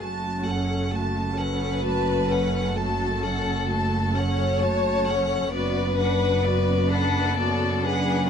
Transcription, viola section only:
0.00 0.42 A3 soft
0.00 0.42 F#4 soft
0.45 0.92 C#4 soft
0.45 0.92 A4 soft
0.92 1.38 A3 soft
0.92 1.39 F#4 soft
1.38 1.84 C#4 soft
1.38 1.84 A4 soft
1.84 2.27 A3 soft
1.84 2.27 F#4 soft
2.29 2.76 C#4 soft
2.29 2.76 A4 soft
2.76 3.22 A3 soft
2.76 3.23 F#4 soft
3.23 3.69 C#4 soft
3.23 3.69 A4 soft
3.69 4.12 A3 soft
3.69 4.12 F#4 soft
4.15 4.61 C#4 soft
4.15 4.61 A4 soft
4.62 5.08 A3 soft
4.62 5.08 F#4 soft
5.08 5.54 C#4 soft
5.08 5.54 A4 soft
5.53 5.96 B3 soft
5.53 5.96 F#4 soft
6.00 6.46 D4 soft
6.00 6.46 B4 soft
6.46 6.92 B3 soft
6.46 6.92 F#4 soft
6.90 7.37 D4 soft
6.90 7.37 B4 soft
7.37 7.80 B3 soft
7.37 7.80 F#4 soft
7.83 8.29 D4 soft
7.83 8.29 B4 soft

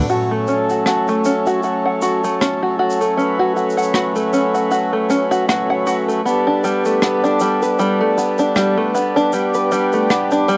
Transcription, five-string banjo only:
0.10 0.29 F#4 medium
0.31 0.47 A3 medium
0.48 0.68 C#4 medium
0.70 0.85 F#4 medium
0.87 1.06 F#4 medium
1.09 1.25 A3 medium
1.25 1.45 C#4 medium
1.47 1.62 F#4 medium
1.64 1.83 F#4 medium
1.85 2.01 F#5 medium
2.02 2.22 F#4 medium
2.24 2.39 A3 medium
2.41 2.60 C#4 medium
2.63 2.78 F#4 medium
2.79 2.98 F#4 medium
3.01 3.17 A3 medium
3.17 3.37 C#4 medium
3.39 3.54 F#4 medium
3.56 3.76 F#4 medium
3.77 3.93 F#5 medium
3.95 4.14 F#4 medium
4.16 4.31 A3 medium
4.33 4.52 C#4 medium
4.54 4.70 F#4 medium
4.71 4.91 F#4 medium
4.93 5.09 A3 medium
5.10 5.29 C#4 medium
5.31 5.46 F#4 medium
5.48 5.68 F#4 medium
5.70 5.85 F#5 medium
5.87 6.06 F#4 medium
6.08 6.24 A3 medium
6.25 6.45 B3 medium
6.47 6.62 D4 medium
6.64 6.83 G3 medium
6.86 7.01 A3 medium
7.03 7.22 B3 medium
7.24 7.39 D4 medium
7.41 7.60 G3 medium
7.63 7.78 B4 medium
7.79 7.99 G3 medium
8.01 8.16 A3 medium
8.18 8.37 B3 medium
8.39 8.54 D4 medium
8.56 8.75 G3 medium
8.78 8.94 A3 medium
8.94 9.14 B3 medium
9.16 9.31 D4 medium
9.33 9.52 G3 medium
9.54 9.70 B4 medium
9.72 9.91 G3 medium
9.93 10.08 A3 medium
10.10 10.29 B3 medium
10.32 10.47 D4 medium
10.48 10.57 G3 medium

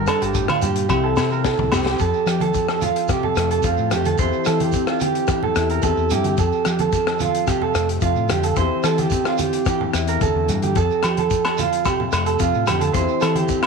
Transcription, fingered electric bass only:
0.22 0.46 G1 medium
0.62 0.87 G2 medium
0.90 1.14 C2 loud
1.17 1.53 C3 medium
1.58 1.95 C2 medium
2.00 2.12 F2 medium
2.26 2.51 F3 medium
3.37 3.61 F2 medium
3.64 3.76 F2 medium
3.78 3.90 A2 medium
3.92 4.16 F2 medium
4.19 4.31 E2 medium
4.47 4.71 E3 medium
5.56 5.80 E2 medium
5.83 5.96 E2 medium
5.97 6.09 E2 medium
6.11 6.35 G2 medium
6.38 6.50 F2 medium
6.66 6.90 F3 medium
7.75 7.99 F2 loud
8.02 8.15 F2 medium
8.16 8.28 A2 medium
8.29 8.53 F2 medium
8.57 8.69 E2 medium
8.84 9.08 E3 medium
9.94 10.18 E2 medium
10.21 10.34 E2 medium
10.35 10.47 E2 medium
10.49 10.73 G2 medium
10.76 10.88 F2 medium
11.04 11.28 F3 medium
12.13 12.37 F2 medium
12.40 12.52 F2 medium
12.55 12.66 A2 medium
12.68 12.92 F2 medium
12.95 13.07 E2 medium
13.22 13.46 E3 medium

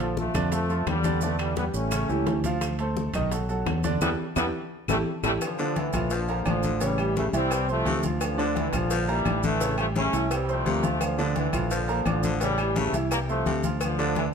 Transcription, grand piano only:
0.00 0.28 F3 medium
0.00 0.29 F4 medium
0.00 0.29 A4 medium
0.34 0.49 D3 medium
0.34 0.49 D4 medium
0.34 0.49 D5 medium
0.52 0.66 F3 medium
0.52 0.67 F4 medium
0.52 0.67 A4 medium
0.69 0.98 F3 medium
0.69 0.98 F4 medium
0.69 0.99 A4 medium
1.04 1.19 D3 medium
1.04 1.19 D4 medium
1.04 1.19 D5 medium
1.23 1.51 D3 medium
1.23 1.51 D4 medium
1.23 1.51 D5 medium
1.57 1.86 G3 medium
1.57 1.86 G4 medium
1.57 1.86 B4 medium
1.91 2.06 C#3 medium
1.91 2.06 C#4 medium
1.91 2.06 C#5 medium
2.09 2.38 E3 medium
2.09 2.38 E4 medium
2.09 2.38 G4 medium
2.45 2.73 F3 medium
2.45 2.74 F4 medium
2.45 2.74 F5 medium
2.80 3.08 A3 medium
2.80 3.08 A4 medium
2.80 3.09 C5 medium
3.15 3.29 D#3 medium
3.15 3.29 D#4 medium
3.15 3.29 D#5 medium
3.32 3.46 F#3 medium
3.32 3.46 F#4 medium
3.32 3.46 A4 medium
3.49 3.78 F#3 medium
3.49 3.78 F#4 medium
3.49 3.78 A4 medium
3.84 3.99 D3 medium
3.84 3.98 D4 medium
3.84 3.99 D5 medium
4.02 4.13 D4 loud
4.02 4.13 E4 medium
4.02 4.13 G4 medium
4.37 4.48 D4 loud
4.37 4.48 E4 loud
4.37 4.48 G4 medium
4.90 5.01 E4 loud
4.90 5.01 G4 loud
4.90 5.01 A4 loud
5.24 5.35 E4 loud
5.24 5.35 G4 loud
5.24 5.35 A4 medium
5.59 5.88 D3 medium
5.59 5.88 D4 medium
5.59 5.88 D5 medium
5.94 6.23 F3 medium
5.94 6.23 F4 medium
5.94 6.23 F5 medium
6.29 6.43 A#3 medium
6.29 6.43 A#4 medium
6.29 6.44 A#5 medium
6.46 6.74 D4 medium
6.46 6.74 D5 medium
6.46 6.75 D6 medium
6.81 6.95 C#3 medium
6.81 6.95 C#4 medium
6.81 6.96 C#5 medium
6.99 7.27 G3 medium
6.99 7.27 G4 medium
6.99 7.28 G5 medium
7.33 7.48 E3 medium
7.33 7.48 E4 medium
7.33 7.48 E5 medium
7.51 7.65 G3 medium
7.51 7.66 G4 medium
7.51 7.66 G5 medium
7.68 7.97 C4 medium
7.68 7.97 C5 medium
7.68 7.97 C6 medium
8.03 8.32 F3 medium
8.03 8.32 F4 medium
8.03 8.32 F5 medium
8.38 8.67 D3 medium
8.38 8.67 D4 medium
8.38 8.67 D5 medium
8.73 9.02 F3 medium
8.73 9.02 F4 medium
8.73 9.02 F5 medium
9.08 9.23 A#3 medium
9.08 9.23 A#4 medium
9.08 9.23 A#5 medium
9.26 9.55 D4 medium
9.26 9.55 D5 medium
9.26 9.55 D6 medium
9.61 9.75 C#3 medium
9.61 9.76 C#4 medium
9.61 9.76 C#5 medium
9.78 10.07 G3 medium
9.78 10.07 G4 medium
9.78 10.07 G5 medium
10.13 10.27 E3 medium
10.13 10.28 E4 medium
10.13 10.28 E5 medium
10.31 10.45 G3 medium
10.31 10.46 G4 medium
10.31 10.46 G5 medium
10.49 10.77 C4 medium
10.49 10.78 C5 medium
10.49 10.78 C6 medium
10.83 11.12 F3 medium
10.83 11.12 F4 medium
10.83 11.12 F5 medium
11.19 11.47 D3 medium
11.19 11.47 D4 medium
11.19 11.48 D5 medium
11.54 11.83 F3 medium
11.54 11.82 F4 medium
11.54 11.83 F5 medium
11.89 12.03 A#3 medium
11.89 12.03 A#4 medium
11.89 12.03 A#5 medium
12.07 12.35 D4 medium
12.07 12.35 D5 medium
12.07 12.35 D6 medium
12.42 12.56 C#3 medium
12.42 12.56 C#4 medium
12.42 12.56 C#5 medium
12.59 12.87 G3 medium
12.59 12.88 G4 medium
12.59 12.88 G5 medium
12.94 13.08 E3 medium
12.94 13.09 E4 medium
12.94 13.09 E5 medium
13.11 13.26 G3 medium
13.11 13.26 G4 medium
13.11 13.26 G5 medium
13.29 13.58 C4 medium
13.29 13.58 C5 medium
13.29 13.58 C6 medium
13.64 13.93 F3 medium
13.64 13.93 F4 medium
13.64 13.93 F5 medium
13.99 14.28 D3 medium
13.99 14.28 D4 medium
13.99 14.28 D5 medium

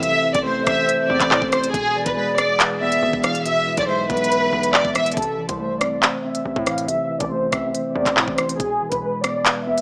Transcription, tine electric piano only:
0.00 0.02 C3 loud
0.00 1.10 C3 loud
0.00 0.24 E3 medium
0.00 0.46 A3 medium
0.00 0.67 C4 medium
0.00 0.24 C5 loud
0.24 1.31 E3 medium
0.46 1.53 A3 medium
0.67 1.08 C4 medium
0.88 1.74 C5 loud
1.09 1.74 C4 medium
1.53 1.74 E3 medium
1.74 2.81 B2 loud
1.95 3.03 E3 medium
2.17 3.24 G#3 medium
2.60 3.67 B4 loud
2.82 3.89 B3 medium
3.24 3.66 E3 medium
3.45 4.52 B2 loud
3.67 4.74 E3 medium
3.88 4.95 G#3 loud
4.09 4.52 B3 loud
4.32 5.17 B4 loud
4.53 5.17 B3 medium
4.95 5.17 E3 medium
5.17 6.24 C3 medium
5.38 6.45 E3 medium
5.60 6.67 A3 medium
5.82 6.23 C4 medium
6.02 7.10 C5 loud
6.24 7.31 C4 medium
6.67 7.08 E3 medium
6.88 7.95 C3 loud
7.09 8.17 E3 medium
7.31 8.38 A3 medium
7.52 7.94 C4 medium
7.74 8.60 C5 loud
7.95 8.60 C4 medium
8.38 8.60 E3 medium
8.60 9.67 B2 medium
8.81 9.81 E3 medium
9.03 9.81 G#3 medium
9.24 9.66 B3 medium
9.46 9.81 B4 loud
9.67 9.81 B3 medium

